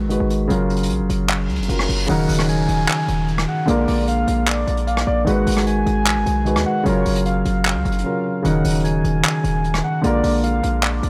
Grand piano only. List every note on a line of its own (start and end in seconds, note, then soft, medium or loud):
0.00 0.09 D#3 medium
0.00 0.10 G#3 medium
0.00 0.11 F#4 medium
0.00 0.12 B4 medium
0.09 0.50 D#3 medium
0.09 0.50 G#3 medium
0.09 0.50 F#4 medium
0.09 0.51 B4 medium
0.48 1.66 C#3 medium
0.48 1.66 F#3 medium
0.48 1.67 F4 medium
0.52 1.68 A#4 medium
1.68 2.05 C#3 medium
1.68 2.07 F#3 medium
1.68 2.09 F4 medium
1.68 2.10 A#4 medium
2.07 3.64 C#3 medium
2.07 3.64 F#3 medium
2.07 3.65 D#4 medium
2.12 3.66 A#4 medium
3.66 5.22 D3 medium
3.66 5.23 G#3 medium
3.66 5.24 F4 medium
3.70 5.25 A#4 medium
4.87 5.06 F5 medium
5.07 5.26 D5 medium
5.25 6.43 D#3 medium
5.25 6.43 G#3 medium
5.25 6.44 F#4 medium
5.29 6.45 B4 medium
6.45 6.85 D#3 medium
6.45 6.86 G#3 medium
6.45 6.86 F#4 medium
6.45 6.87 B4 medium
6.83 8.01 C#3 medium
6.83 8.02 F#3 medium
6.83 8.03 F4 medium
6.88 8.04 A#4 medium
8.04 8.41 C#3 medium
8.04 8.43 F#3 medium
8.04 8.45 F4 medium
8.04 8.45 A#4 medium
8.43 9.99 C#3 medium
8.43 10.00 F#3 medium
8.43 10.01 D#4 medium
8.47 10.02 A#4 medium
10.01 11.10 D3 medium
10.01 11.10 G#3 medium
10.01 11.10 F4 medium
10.06 11.10 A#4 medium